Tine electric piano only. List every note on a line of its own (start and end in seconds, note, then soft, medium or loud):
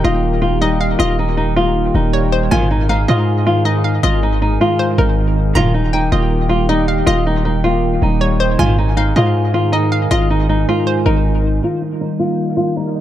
0.00 0.24 D#3 medium
0.05 1.00 A#3 loud
0.24 0.98 D#3 medium
0.42 0.60 G3 medium
0.62 1.57 G3 medium
0.81 1.75 D#5 medium
0.99 1.36 D#3 medium
1.38 1.74 D#3 medium
1.57 2.52 A#3 medium
1.76 2.52 D#3 medium
1.95 2.12 G3 medium
2.13 2.51 G3 loud
2.32 2.51 D#5 medium
2.51 2.88 G#2 loud
2.89 3.26 G#2 medium
3.08 4.03 G#3 loud
3.27 4.03 G#2 medium
3.46 3.64 D#3 medium
3.65 4.60 D#3 medium
3.84 4.79 D#4 medium
4.04 4.40 G#2 medium
4.41 4.78 G#2 medium
4.60 5.55 G#3 medium
4.79 5.55 G#2 medium
4.98 5.16 D#3 medium
5.17 5.54 D#3 medium
5.36 5.55 D#4 medium
5.55 5.92 D#3 medium
5.93 6.30 D#3 medium
6.12 7.07 A#3 medium
6.31 7.06 D#3 medium
6.50 6.68 G3 medium
6.69 7.64 G3 medium
6.88 7.83 D#5 medium
7.07 7.44 D#3 medium
7.45 7.82 D#3 medium
7.64 8.59 A#3 medium
7.83 8.59 D#3 medium
8.02 8.20 G3 medium
8.21 8.59 G3 loud
8.40 8.59 D#5 medium
8.59 8.96 G#2 loud
8.97 9.34 G#2 medium
9.16 10.11 G#3 medium
9.35 10.10 G#2 medium
9.54 9.71 D#3 medium
9.73 10.68 D#3 medium
9.92 10.87 D#4 medium
10.11 10.48 G#2 medium
10.49 10.85 G#2 medium
10.68 11.63 G#3 loud
10.87 11.63 G#2 medium
11.06 11.24 D#3 medium
11.25 11.62 D#3 medium
11.44 11.63 D#4 medium
11.63 12.00 D#3 medium
12.01 12.38 D#3 medium
12.20 13.01 A#3 medium
12.39 13.01 D#3 medium
12.57 12.76 G3 medium
12.77 13.01 G3 medium
12.96 13.01 D#5 medium